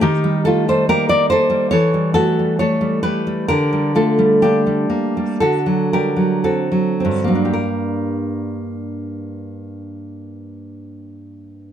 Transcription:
\new Staff \with { instrumentName = "Nylon-string guitar" } { \time 4/4 \key g \minor \tempo 4 = 59 << { <ees' g'>8 <f' a'>16 <a' c''>16 <g' bes'>16 <bes' d''>16 <a' c''>8 <a' cis''>8 <fis' a'>8 <a' cis''>8 <g' b'>8 | <g' bes'>8 <f' a'>8 <d' g'>4 <fis' a'>8 <g' bes'>8 <fis' a'>4 | <g, bes d' g' bes'>1 | } \\ { ees16 g16 a16 g16 bes16 g16 bes16 g16 e16 g16 a16 g16 a16 g16 a16 g16 | d16 g16 a16 g16 bes16 g16 bes16 g16 d16 fis16 g16 fis16 c'16 fis16 c'16 fis16 | r1 | } >> }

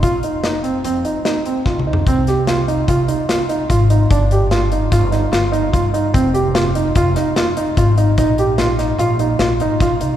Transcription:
<<
  \new Staff \with { instrumentName = "Grand piano" } { \time 5/4 \key c \minor \tempo 4 = 147 f'8 ees'8 ees'8 c'8 c'8 ees'8 ees'8 c'8 f'8 ees'8 | c'8 g'8 f'8 ees'8 f'8 ees'8 f'8 ees'8 f'8 ees'8 | d'8 g'8 f'8 ees'8 f'8 ees'8 f'8 ees'8 f'8 ees'8 | c'8 g'8 f'8 ees'8 f'8 ees'8 f'8 ees'8 f'8 ees'8 |
ees'8 g'8 f'8 ees'8 f'8 ees'8 f'8 ees'8 f'8 ees'8 | }
  \new Staff \with { instrumentName = "Upright bass" } { \clef bass \time 5/4 \key c \minor bes,,8 r4. f,8 r4. d,8 c,8 | c,2 c,8 r4. aes,,4 | g,,2 g,,4 g,,4 g,4 | f,,2 f,,8 r4. aes,,4 |
bes,,2 bes,,4 bes,,8 aes,,8 bes,,8 c,8 | }
  \new DrumStaff \with { instrumentName = "Drums" } \drummode { \time 5/4 <hh bd>8 hh8 <hh sn>8 hh8 hh8 hh8 <hh sn>8 hh8 \tuplet 3/2 { <bd sn>8 toml8 tomfh8 } | <hh bd>8 <hh sn>8 <hh sn>8 hh8 <hh bd>8 hh8 <hh sn>8 hh8 <hh bd>8 hh8 | <hh bd>8 hh8 <hh sn>8 hh8 <hh bd sn>8 <hh sn>8 <hh sn>8 hh8 <hh bd>8 hh8 | <hh bd>8 hh8 <hh sn>8 hh8 <hh bd>8 <hh sn>8 <hh sn>8 hh8 <hh bd>8 hh8 |
<hh bd>8 hh8 <hh sn>8 <hh sn>8 hh8 hh8 <hh sn>8 hh8 <hh bd sn>8 hh8 | }
>>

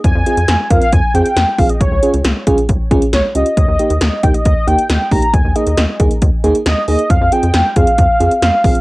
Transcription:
<<
  \new Staff \with { instrumentName = "Soft synth lead" } { \time 4/4 \key f \dorian \tempo 4 = 136 aes''4. f''16 f''16 aes''8 g''4 f''16 ees''16 | des''4 r2 des''8 ees''8~ | ees''4. g''16 ees''16 ees''8 g''4 bes''8 | aes''8 ees''4 r4. ees''8 ees''8 |
f''8 g''4 f''4. f''4 | }
  \new Staff \with { instrumentName = "FM electric piano" } { \time 4/4 \key f \dorian r8 <c' f' aes'>8 r8 <c' f' bes'>8 r8 <c' f' aes'>8 r8 <c' f' aes'>8 | r8 <des' f' aes'>8 r8 <des' f' aes'>8 r8 <des' f' aes'>8 r8 <des' f' g'>8 | r8 <bes ees' g'>8 r8 <bes ees' g'>8 r8 <bes ees' g'>8 r8 <bes ees' g'>8 | r8 <bes ees' aes'>8 r8 <bes ees' aes'>8 r8 <bes ees' aes'>8 r8 <bes ees' aes'>8 |
r8 <c' f' aes'>8 r8 <c' f' aes'>8 r8 <c' f' aes'>8 r8 <c' f' aes'>8 | }
  \new Staff \with { instrumentName = "Analog synth bass" } { \clef bass \time 4/4 \key f \dorian f,16 f,16 r16 f,16 f,16 r16 f,16 r16 f,16 r16 f,16 r16 f,16 r16 bes,,16 r16 | des,16 des,16 r16 des,16 des,16 r16 des,16 r16 des,16 r16 des,16 r16 des,16 r16 des,16 r16 | ees,16 ees,16 r16 ees,16 ees,16 r16 ees,16 r16 ees,16 r16 ees,16 r16 ees,16 r16 d,16 r16 | ees,16 ees,16 r16 ees,16 ees,16 r16 ees,16 r16 ees,16 r16 ees,16 r16 ees,16 r16 ees,16 r16 |
f,16 f,16 r16 f,16 f,16 r16 f,16 r16 f,16 r16 f,16 r16 f,16 r16 bes,,16 r16 | }
  \new DrumStaff \with { instrumentName = "Drums" } \drummode { \time 4/4 <hh bd>8 hh16 hh16 <hh sn>8 <hh bd>16 hh16 <hh bd>8 hh16 hh16 <hh sn>8 <hho bd>16 hh16 | <hh bd>8 hh16 hh16 <hh sn>8 <hh bd>16 hh16 <hh bd>8 <hh bd>16 hh16 <hh sn>8 hh16 hh16 | <hh bd>8 hh16 hh16 <hh sn>8 <hh bd>16 hh16 <hh bd>8 hh16 hh16 <hh sn>8 <hho bd>16 hh16 | <hh bd>8 hh16 hh16 <hh sn>8 <hh bd>16 hh16 <hh bd>8 hh16 hh16 <hh sn>8 hho16 hh16 |
<hh bd>8 hh16 hh16 <hh sn>8 <hh bd>16 hh16 <hh bd>8 hh16 hh16 <hh sn>8 <hho bd>16 hh16 | }
>>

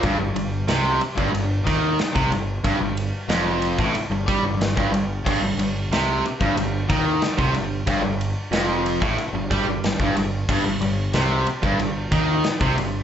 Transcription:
<<
  \new Staff \with { instrumentName = "Distorted electric guitar" } { \clef bass \time 4/4 \key c \dorian \tempo 4 = 92 g,16 g,16 g,8 c8 r16 g,16 g,8 ees8 r16 c16 g,8 | g,16 g,8 r16 f,8. a,16 r16 g,16 g16 g,16 g,16 g,16 g,8 | g,16 g,16 g,8 c8 r16 g,16 g,8 ees8 r16 c16 g,8 | g,16 g,8 r16 f,8. a,16 r16 g,16 g16 g,16 g,16 g,16 g,8 |
g,16 g,16 g,8 c8 r16 g,16 g,8 ees8 r16 c16 g,8 | }
  \new Staff \with { instrumentName = "Overdriven electric guitar" } { \clef bass \time 4/4 \key c \dorian g,16 g,16 g,8 c8 r16 g,16 g,8 ees8 r16 c16 g,8 | g,16 g,8 r16 f,8. a,16 r16 g,16 g16 g,16 g,16 g,16 g,8 | g,16 g,16 g,8 c8 r16 g,16 g,8 ees8 r16 c16 g,8 | g,16 g,8 r16 f,8. a,16 r16 g,16 g16 g,16 g,16 g,16 g,8 |
g,16 g,16 g,8 c8 r16 g,16 g,8 ees8 r16 c16 g,8 | }
  \new Staff \with { instrumentName = "Fingered electric bass" } { \clef bass \time 4/4 \key c \dorian g,,16 g,,16 g,,8 c,8 r16 g,,16 g,,8 ees,8 r16 c,16 g,,8 | g,,16 g,,8 r16 f,,8. a,,16 r16 g,,16 g,16 g,,16 g,,16 g,,16 g,,8 | g,,16 g,,16 g,,8 c,8 r16 g,,16 g,,8 ees,8 r16 c,16 g,,8 | g,,16 g,,8 r16 f,,8. a,,16 r16 g,,16 g,16 g,,16 g,,16 g,,16 g,,8 |
g,,16 g,,16 g,,8 c,8 r16 g,,16 g,,8 ees,8 r16 c,16 g,,8 | }
  \new DrumStaff \with { instrumentName = "Drums" } \drummode { \time 4/4 <bd cymr>8 cymr8 <cymr sn>8 cymr16 bd16 cymr8 <bd cymr sn>8 <cymr sn>16 bd16 cymr8 | <bd cymr>8 cymr8 <cymr sn>8 cymr16 bd16 cymr8 <bd cymr sn>8 <cymr sn>16 bd16 cymr8 | <cymc bd>8 cymr8 <cymr sn>8 cymr16 bd16 cymr8 <bd cymr>8 <cymr sn>16 bd16 cymr8 | <bd cymr>8 cymr8 <cymr sn>8 cymr16 bd16 cymr8 <bd cymr sn>8 <cymr sn>16 bd16 cymr8 |
<cymc bd>8 cymr8 <cymr sn>8 cymr16 bd16 cymr8 <bd cymr>8 <cymr sn>16 bd16 cymr8 | }
>>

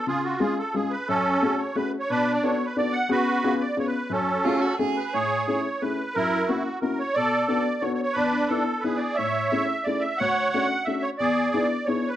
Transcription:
<<
  \new Staff \with { instrumentName = "Accordion" } { \time 3/4 \key fis \minor \tempo 4 = 178 << { gis'8 fis'8 gis'8 a'8 gis'8 b'8 | a'4. cis''8 \tuplet 3/2 { b'8. r16 cis''8 } | \tuplet 3/2 { b'4 d''8 cis''4 b'8 } d''8 fis''8 | b'4. d''8 cis''16 b'8. |
a'2 r8 b'8 | \key a \major cis''4 cis''4 b'4 | ais'4 fis'4 ais'8 cis''8 | d''4 d''4 \tuplet 3/2 { cis''8 cis''8 cis''8 } |
b'4 a'4 b'8 d''8 | e''4 e''4 d''8 e''8 | fis''4 fis''4 e''8 cis''8 | d''4 d''4 \tuplet 3/2 { cis''4 b'8 } | } \\ { eis'4. r4. | cis'4. r4. | d'4. r4. | fis'4. r4. |
cis'2 r4 | gis'4. r4. | e'4. r4. | a'4. r4. |
d'4. r8 gis'4 | cis''4. r4. | cis''4. r4. | gis'4. r4. | } >> }
  \new Staff \with { instrumentName = "Violin" } { \time 3/4 \key fis \minor r2. | r2. | r2. | r2. |
r4 eis'8 fis'8 gis'4 | \key a \major r2. | r2. | r2. |
r2. | r2. | r2. | r2. | }
  \new Staff \with { instrumentName = "Upright piano" } { \time 3/4 \key fis \minor cis4 <gis cis' eis' gis'>8 r8 <gis cis' eis' gis'>8 r8 | fis,4 <a cis' fis' gis'>8 r8 <a cis' fis' gis'>8 r8 | b,4 <b d' fis' a'>8 r8 <b d' fis' a'>8 r8 | <b cis' fis' gis'>4 <b cis' eis' gis'>8 r8 <b cis' eis' gis'>8 r8 |
fis,4 <a cis' fis' gis'>8 r8 <a cis' fis' gis'>8 r8 | \key a \major a,4 <a cis' e' gis'>8 r8 <a cis' e' gis'>8 r8 | fis,4 <ais cis' e' fis'>8 r8 <ais cis' e' fis'>8 r8 | b,4 <b d' fis' a'>8 r8 <b d' fis' a'>8 r8 |
e,4 <b d' e' a'>8 r8 <b d' e' gis'>8 r8 | a,4 <a cis' e' gis'>8 r8 <a cis' e' gis'>8 r8 | d,4 <a cis' d' fis'>8 r8 <a cis' d' fis'>8 r8 | e,4 <b d' e' gis'>8 r8 <b d' e' gis'>8 r8 | }
>>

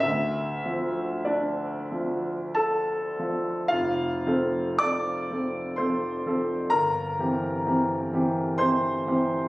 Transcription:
\new Staff \with { instrumentName = "Grand piano" } { \time 3/4 \key d \minor \tempo 4 = 62 << { e''4 d''4 <a' a''>4 | \key f \major <f' f''>4 <d'' d'''>4 <c'' c'''>4 | <bes' bes''>4. r8 <c'' c'''>4 | } \\ { d,8 f8 d'8 f4 f8 | f,,8 <f c' a'>8 <f c' a'>8 <f c' a'>8 <f c' a'>8 <f c' a'>8 | g,,8 <e c' g'>8 <e c' g'>8 <e c' g'>8 <e c' g'>8 <e c' g'>8 | } >> }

